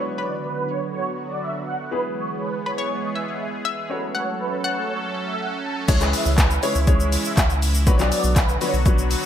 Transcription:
Already playing: D3 F#3 B3 D4 F#4 B4 C#5
0.18 B4 D5
0.43 B4
0.68 C#5
0.92 C#5
1.30 D5
1.42 E5
1.67 F#5
1.91 E3 G#3 B3 E4 G#4 B4
2.16 C#5
2.41 B4
2.66 B4 C#5
2.78 C#5
2.91 C#5
3.15 E5
3.28 E5
3.65 E5
3.90 F#3 A3 C#4 F#4 A4 B4 C#5
4.15 C#5 F#5
4.40 B4
4.64 C#5 F#5
4.89 C#5
5.27 E5
5.39 F#5
5.64 A5
5.88 C#2 C#3 E3 G#3 C#4 E4 G#4 C#5, kick, closed hi-hat, crash, shaker
6.01 G#3 C#4 E4 G#4 B4, clap, shaker
6.13 E5, open hi-hat, shaker
6.25 C#2, shaker
6.38 B4, kick, clap, closed hi-hat, shaker
6.51 shaker
6.63 G#3 C#4 E4 G#4 C#5, open hi-hat, shaker
6.75 C#2, shaker
6.87 G#3 C#4 E4 G#4 C#5, kick, closed hi-hat, shaker
7.00 shaker
7.12 open hi-hat, shaker
7.25 E5, shaker
7.37 C#2, kick, clap, closed hi-hat, shaker
7.50 shaker
7.62 open hi-hat, shaker
7.74 shaker
7.87 B1 D3 F#3 B3 D4 F#4 B4 C#5, kick, closed hi-hat, shaker
7.99 F#3 B3 D4 F#4 D5, clap, shaker
8.12 D5, open hi-hat, shaker
8.24 B1, shaker
8.36 B4, kick, clap, closed hi-hat, shaker
8.49 shaker
8.61 F#3 B3 D4 F#4 B4 C#5, open hi-hat, shaker
8.74 B1, shaker
8.86 F#3 B3 D4 F#4 B4 C#5, kick, closed hi-hat, shaker
8.98 shaker
9.11 open hi-hat, shaker

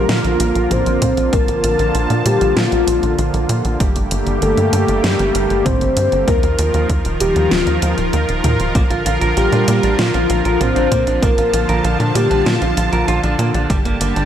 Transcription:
Already playing: D3 F3 A#3 F4 G4 A#4
0.09 A#2 F4, snare, closed hi-hat
0.24 A#1, closed hi-hat
0.40 A#1, closed hi-hat
0.55 A#1, closed hi-hat
0.71 A#1 C5, closed hi-hat, mid tom
0.86 A#1, closed hi-hat
1.02 A#2, kick, closed hi-hat
1.17 A#1, closed hi-hat
1.33 A#1 A#4 A5, kick, closed hi-hat
1.48 A#1, closed hi-hat
1.64 A#1, closed hi-hat
1.79 A#1, closed hi-hat
1.95 A#1, closed hi-hat
2.10 A#2, closed hi-hat
2.26 A#2 G4, closed hi-hat
2.41 A#1, closed hi-hat
2.57 A#2 F4, snare, closed hi-hat
2.72 A#1, closed hi-hat
2.87 A#1, closed hi-hat
3.03 A#1, closed hi-hat
3.18 A#1, closed hi-hat
3.34 A#1, closed hi-hat
3.49 A#2, closed hi-hat
3.65 A#1, closed hi-hat
3.80 G1 G3 A3 A#3 G4, kick, closed hi-hat
3.96 G1, closed hi-hat
4.11 G1, closed hi-hat
4.27 G1, closed hi-hat
4.42 G1 A4, closed hi-hat
4.57 G2, closed hi-hat
4.73 G2, closed hi-hat
4.88 G1, closed hi-hat
5.04 G2 G4, snare, closed hi-hat
5.19 G1, closed hi-hat
5.35 G1, closed hi-hat
5.50 G1, closed hi-hat
5.65 G1 C5, kick, closed hi-hat, mid tom
5.81 G1, closed hi-hat
5.97 G2, closed hi-hat
6.12 G1, closed hi-hat
6.28 D#2 D#3 F3 F4 A#4, kick, closed hi-hat
6.43 D#2, closed hi-hat
6.59 D#2, closed hi-hat
6.74 D#2, closed hi-hat
6.89 D#2, kick, closed hi-hat
7.05 D#1, closed hi-hat
7.20 D#1 G4, closed hi-hat
7.36 D#2, closed hi-hat
7.51 D#1 F4, snare, closed hi-hat
7.67 D#2, closed hi-hat
7.82 D#2, closed hi-hat
7.98 D#1, closed hi-hat
8.13 D#2, closed hi-hat
8.29 D#1, closed hi-hat
8.44 D#2, closed hi-hat, mid tom
8.60 D#1, closed hi-hat
8.75 A#1 D3 F3 A#3, kick, closed hi-hat
8.90 A#1 F4, closed hi-hat
9.06 A#1 F4, closed hi-hat
9.21 A#1 A#4, closed hi-hat
9.37 A#1 F4 G4, closed hi-hat
9.52 A#2 D4, closed hi-hat
9.68 A#2 A#3, closed hi-hat
9.83 A#1 D4, closed hi-hat
9.99 A#2 A#3 F4, snare, closed hi-hat
10.14 A#1 F4, closed hi-hat
10.30 A#1 F4, closed hi-hat
10.45 A#1 A#4, closed hi-hat
10.60 A#1 F4 C5, closed hi-hat, mid tom
10.76 A#1 D4, closed hi-hat
10.92 A#2 A#3, kick, closed hi-hat
11.07 A#1 D4, closed hi-hat
11.22 A#1 A#3 A#4 A5, kick, closed hi-hat
11.38 A#1 F4, closed hi-hat
11.53 A#1 F4, closed hi-hat
11.69 A#1 A#4, closed hi-hat
11.84 A#1 F4, closed hi-hat
12.00 A#2 D4, closed hi-hat
12.15 A#2 A#3 G4, closed hi-hat
12.31 A#1 D4, closed hi-hat
12.46 A#2 A#3 F4, snare, closed hi-hat
12.62 A#1 F4, closed hi-hat
12.77 A#1 F4, closed hi-hat
12.93 A#1 A#4, closed hi-hat
13.08 A#1 F4, closed hi-hat
13.23 A#1 D4, closed hi-hat
13.39 A#2 A#3, closed hi-hat
13.54 A#1 D4, closed hi-hat
13.70 G1 G3 G4 A5, kick, closed hi-hat
13.85 G1 A#3, closed hi-hat
14.01 G1 A#3, closed hi-hat
14.16 G1 D4, closed hi-hat

